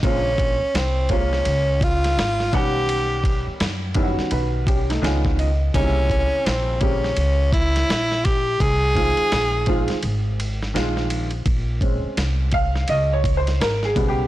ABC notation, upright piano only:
X:1
M:4/4
L:1/16
Q:"Swing 16ths" 1/4=84
K:Bbm
V:1 name="Upright piano"
z16 | z8 [^F=B]2 [D=G] [=A,E] _a2 e2 | z16 | z16 |
z6 f2 (3e2 d2 c2 (3B2 A2 =G2 |]
V:2 name="Upright piano"
[D,A,B,CF]2 z4 [C,A,B,DFc]2 z6 [E,=G,=B,D^f]2- | [E,=G,=B,D^f]4 z2 [E,G,B,D=E^F]6 [_E,A,_CD=F]2 z2 | [C,D,=G,B,E=E]6 [D,G,B,C=G]2 z8 | z2 [E,F,A,CF]4 [E,F,A,CF]2 z4 [E,F,A,CF]2 z2 |
z2 [A,CD]6 z6 [^C,=G,=B,]2 |]